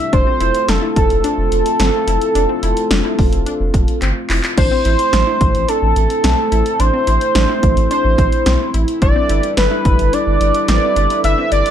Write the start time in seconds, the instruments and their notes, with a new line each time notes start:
Already playing: analog synth pad A3, analog synth lead E5
0.13 analog synth bass F1, analog synth pad C4 F4, synth pluck D4, analog synth lead C5, kick, closed hi-hat
0.27 synth pluck C4
0.41 analog synth bass F1, synth pluck E4, closed hi-hat
0.55 closed hi-hat
0.68 analog synth bass F1, synth pluck D4, analog synth lead A4, snare, closed hi-hat
0.82 synth pluck E4
0.96 analog synth bass F1, analog synth lead A4, kick, closed hi-hat
1.10 analog synth bass F1, closed hi-hat
1.24 synth pluck D4, closed hi-hat
1.38 analog synth bass F1
1.52 analog synth bass F1, closed hi-hat
1.66 closed hi-hat
1.80 analog synth bass G1, synth pluck C4, snare, closed hi-hat
2.07 analog synth bass F1, synth pluck E4, closed hi-hat
2.21 closed hi-hat
2.35 analog synth bass F1, synth pluck D4, closed hi-hat
2.49 synth pluck C4
2.63 analog synth bass F1, synth pluck E4, closed hi-hat
2.77 closed hi-hat
2.91 analog synth bass F1, synth pluck D4, snare, closed hi-hat
3.05 synth pluck E4
3.19 analog synth bass F1, kick, open hi-hat
3.33 analog synth bass F1, closed hi-hat
3.46 synth pluck D4, closed hi-hat
3.60 analog synth bass F1
3.74 analog synth bass F1, kick, closed hi-hat
3.88 closed hi-hat
4.02 analog synth bass G1, synth pluck C4, clap, closed hi-hat
4.30 analog synth bass F1, synth pluck E4, clap, open hi-hat
4.44 clap, closed hi-hat
4.57 analog synth bass A1, analog synth pad A3 C4 E4, synth pluck D4, analog synth lead C5, kick, closed hi-hat, crash
4.71 synth pluck C4
4.85 analog synth bass A1, synth pluck E4, closed hi-hat
4.99 closed hi-hat
5.13 analog synth bass A1, synth pluck D4, snare, closed hi-hat
5.27 synth pluck E4
5.41 analog synth bass A1, kick, closed hi-hat
5.55 analog synth bass A1, closed hi-hat
5.68 synth pluck D4, analog synth lead A4, closed hi-hat
5.82 analog synth bass A1
5.96 analog synth bass A1, closed hi-hat
6.10 closed hi-hat
6.24 analog synth bass B1, synth pluck C4, snare, closed hi-hat
6.52 analog synth bass A1, synth pluck E4, closed hi-hat
6.66 closed hi-hat
6.80 analog synth bass A1, synth pluck D4, analog synth lead C5, closed hi-hat
6.94 synth pluck C4
7.07 analog synth bass A1, synth pluck E4, closed hi-hat
7.21 closed hi-hat
7.35 analog synth bass A1, synth pluck D4, snare, closed hi-hat
7.49 synth pluck E4
7.63 analog synth bass A1, kick, closed hi-hat
7.77 analog synth bass A1, closed hi-hat
7.91 synth pluck D4, analog synth lead C5, closed hi-hat
8.05 analog synth bass A1
8.18 analog synth bass A1, kick, closed hi-hat
8.32 closed hi-hat
8.46 analog synth bass B1, synth pluck C4, snare, closed hi-hat
8.74 analog synth bass A1, synth pluck E4, closed hi-hat
8.88 closed hi-hat
9.02 analog synth bass G1, analog synth pad G3 D4 A4 B4, synth pluck D4, analog synth lead D5, kick, closed hi-hat
9.16 synth pluck C4
9.29 analog synth bass G1, synth pluck E4, closed hi-hat
9.43 closed hi-hat
9.57 analog synth bass G1, synth pluck D4, analog synth lead B4, snare, closed hi-hat
9.71 synth pluck E4
9.85 analog synth bass G1, kick, closed hi-hat
9.99 analog synth bass G1, closed hi-hat
10.13 synth pluck D4, analog synth lead D5, closed hi-hat
10.27 analog synth bass G1
10.41 analog synth bass G1, closed hi-hat
10.54 closed hi-hat
10.68 analog synth bass A1, synth pluck C4, analog synth lead D5, snare, closed hi-hat
10.96 analog synth bass G1, synth pluck D4, closed hi-hat
11.10 closed hi-hat
11.24 analog synth bass G1, synth pluck D4, analog synth lead E5, closed hi-hat
11.38 synth pluck C4
11.52 analog synth bass G1, synth pluck E4, analog synth lead D5, closed hi-hat
11.66 closed hi-hat